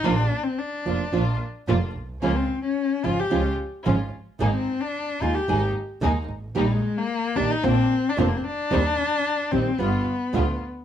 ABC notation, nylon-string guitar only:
X:1
M:4/4
L:1/8
Q:1/4=111
K:Eb
V:1 name="Nylon-string guitar"
[F,B,DF] z2 [F,B,DF] [F,B,DF] z [F,B,DF] z | [_D,F,A,_DF] z2 [D,F,A,DF] [D,F,A,DF] z [D,F,A,DF] z | [E,A,EA] z2 [E,A,EA] [E,A,EA] z [E,A,EA] z | [E,B,EG] z2 [E,B,EG] [D,B,CF] z [D,B,CF] z |
[E,G,CG] z2 [E,G,CG] [G,=B,F] z [G,B,F] z |]